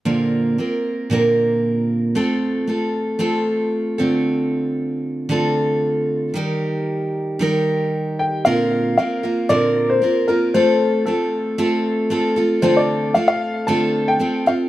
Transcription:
X:1
M:4/4
L:1/16
Q:"Swing 16ths" 1/4=114
K:Bb
V:1 name="Upright piano"
z16 | z16 | z16 | z12 z2 g2 |
f4 f4 d3 c3 B2 | c4 A8- A2 z2 | c d3 f f3 a3 g3 f2 |]
V:2 name="Steel-string acoustic guitar"
[B,,D,B,CFB]4 [B,CFB]4 [B,,D,B,CFB]8 | [A,CFA]4 [A,CFA]4 [A,CFA]6 [D,A,CFA]2- | [D,A,CFA]8 [D,A,CFA]8 | [E,G,EGB]8 [E,G,EGB]8 |
[B,,D,B,CFB]4 [B,CFB]2 [B,CFB]2 [B,,D,B,CFB]4 [B,CFB]2 [B,CFB]2 | [A,CFA]4 [A,CFA]4 [A,CFA]4 [A,CFA]2 [CFA]2 | [D,A,CFA]4 [A,CFA]4 [D,A,CFA]4 [A,CFA]2 [CFA]2 |]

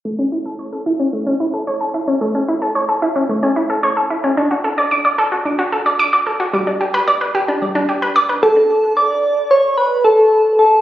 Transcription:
X:1
M:4/4
L:1/16
Q:1/4=111
K:Amix
V:1 name="Soft synth lead"
z16 | z16 | z16 | z12 z2 A2- |
A2 d4 c2 B2 A4 A2 |]
V:2 name="Synth arpeggio sound"
A, C E A c A E C A, C E A c A E C | A, C E A c A E C A, C E A c A E C | D F A d d' d A F D F A d d' d A F | G, D G B d B G D G, D G B d B G D |
z16 |]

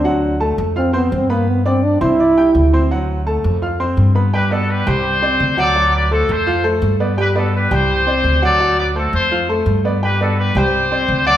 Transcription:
X:1
M:4/4
L:1/8
Q:1/4=169
K:G
V:1 name="Trumpet section"
z8 | z8 | z8 | [GB] [FA] [GB] [Gc]4 [Ad]- |
[Ad] [Bd] [FA] [Ac]2 z3 | [GB] [FA] [GB] [Gc]4 [Ad]- | [Ad] [Bd] [FA] [Ac]2 z3 | [GB] [FA] [GB] [Gc]4 [Ad] |]
V:2 name="Upright piano"
[F,Ff]2 [A,Aa]2 [=F=f=f'] [Ccc']2 [B,Bb]- | [B,Bb] [Ddd']2 [Ccc'] [Ddd'] [Ggg']2 [Ccc'] | [F,Ff]2 [A,Aa]2 [=F=f=f'] [Ccc']2 [B,Bb] | [G,Gg] [B,Bd]2 [G,Gg]2 [Ccd]2 [F,Ff] |
[F,Ff]2 [A,Ac]2 [=F,=F=f] [A,Ac]2 [B,Bd] | [G,Gg] [B,Bd]2 [G,Gg]2 [Ccd]2 [F,Ff] | [F,Ff]2 [A,Ac]2 [=F,=F=f] [A,Ac]2 [B,Bd] | [G,Gg] [B,Bd]2 [G,Gg]2 [Ccd]2 [F,Ff] |]
V:3 name="Trombone"
D2 z2 C B, C _B, | B, C D E4- E | z8 | z8 |
z8 | z8 | z8 | z8 |]
V:4 name="Upright bass" clef=bass
D,,3 =F,,3 G,,2- | G,,3 C,,3 D,,2- | D,,3 =F,,3 G,,2- | G,,3 C,,3 D,,2- |
D,,3 =F,,3 G,,2- | G,,3 C,,3 D,,2- | D,,3 =F,,3 G,,2- | G,,3 C,,3 D,,2 |]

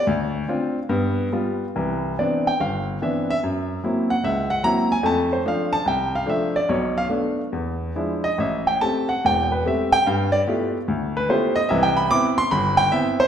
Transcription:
X:1
M:4/4
L:1/8
Q:"Swing" 1/4=145
K:G
V:1 name="Grand piano"
z8 | [K:C] z2 d g f2 e e | z3 ^f e f ^a _a | a c f a g f e d |
^c f z4 z _e | e g a ^f g B e g | f d z3 B c _e | (3e g b d' c' b g e c |]
V:2 name="Grand piano"
D,,2 [CD=F] z [G,,B,]2 [G,B,F] z | [K:C] [C,,E,]2 [E,B,CD] z G,,,2 [E,B,CD] z | ^F,,2 [^F,^A,^B,E] z ^C,,2 [F,A,B,E] z | [F,,A,]2 [F,A,D] z C,,2 [F,A,D] z |
[B,,,B,,]2 [A,B,D] z E,,2 [F,^G,DE] z | A,,,2 [A,CG] z [E,,,E,,]2 [A,CG] z | G,,2 [A,B,EFG] z D,,2 [A,B,EFG] z | [C,,E,]2 [B,CE] z G,,,2 [B,CE] z |]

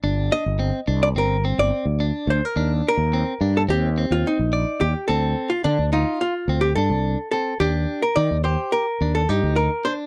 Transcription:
X:1
M:9/8
L:1/16
Q:3/8=71
K:Eblyd
V:1 name="Hollow-body jazz guitar"
z2 e4- e d B2 z d4- d c B- | B z B4- B A G3 F E4 G2 | A3 F D2 E2 F3 G A4 A2 | G3 B d2 c2 B3 A G2 B2 c2 |]
V:2 name="Clean electric guitar"
D4 C2 D2 C2 C4 D4 | D4 C2 D2 C2 C4 d4 | C4 D2 F4 C2 D4 C2 | D4 E2 G4 D2 E4 D2 |]
V:3 name="Fretless electric bass" clef=bass
G,,,2 z G,,,2 z C,,2 G,,,3 G,,, z D,,2 z D,, z | E,,2 z E,,2 z G,,2 E,,3 E,, z B,,,2 z E,, z | D,,2 z2 D, D,,2 z3 D,,2 G,, C,,2 z3 | E,,2 z2 E, E,,2 z3 E,,2 G,, D,,2 z3 |]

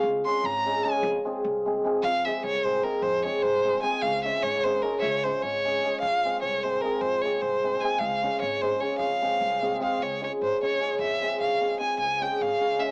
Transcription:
X:1
M:5/8
L:1/16
Q:1/4=151
K:Fm
V:1 name="Violin"
z2 c'2 b4 a2 | z8 z2 | f2 =e2 d2 c2 B2 | c2 d2 c4 a2 |
f2 =e2 d2 c2 B3/2 e/2 | d2 c2 d6 | f4 d2 c2 B2 | c2 d2 c4 a2 |
f4 d2 c2 d2 | f8 f2 | d2 d2 c2 d4 | =e4 f4 a2 |
a2 g2 f4 =e2 |]
V:2 name="Hammered dulcimer"
z2 [A,DFA]2 z2 [A,DFA]2 [A,DFA]2 | z2 [A,CFA]2 z2 [A,CFA]2 [A,CFA]2 | z2 [A,CFA]2 z2 [A,CFA]2 [A,CFA]2 | z2 [A,CFA]2 z2 [A,CFA]2 [A,CFA]2 |
z2 [A,DFA]2 z2 [A,DFA]2 [A,DFA]2 | z2 [A,DFA]2 z2 [A,DFA]2 [A,DFA]2 | z2 [A,CFA]2 z2 [A,CFA]2 [A,CFA]2 | z2 [A,CFA]2 z2 [A,CFA]2 [A,CFA]2 |
z2 [A,DFA]2 z2 [A,DFA]2 [A,DFA]2 | z2 [A,CFA]2 z2 [A,CFA]2 [A,CFA]2 | z2 [A,DFA]2 z2 [A,DFA]2 [A,DFA]2 | z2 [A,CFA]2 z2 [A,CFA]2 [A,CFA]2 |
z2 [A,DFA]2 z2 [A,DFA]2 [A,DFA]2 |]
V:3 name="Upright bass" clef=bass
D,,2 z2 A,,,6 | F,,2 z2 C,,6 | F,,4 C,,6 | F,,4 C,,6 |
D,,4 A,,,6 | D,,4 A,,,6 | F,,4 C,,6 | F,,4 C,,6 |
D,,4 A,,,6 | F,,4 C,,6 | D,,4 A,,,2 z4 | F,,4 C,,2 z4 |
D,,4 A,,,2 z4 |]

